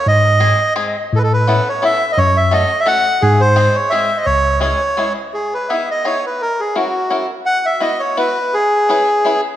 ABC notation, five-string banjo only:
X:1
M:3/4
L:1/8
Q:"Swing" 1/4=170
K:C#m
V:1 name="Five-string banjo"
z2 [G,^B,DG] z [G,B,DG] z | z2 [B,CEA] z [B,CEA] z | z2 [A,CFA] z [A,CFA] z | z2 [G,^B,DG] z [G,B,DG] z |
z2 [G,CEG] z [G,CEG] z | [K:E] z2 [B,DEG] z [B,DEG] z | z2 [CEF^A] z [CEFA] z | z2 [B,EFB] z [B,EFB] z |
z2 [CEGB] z [CEGB] z |]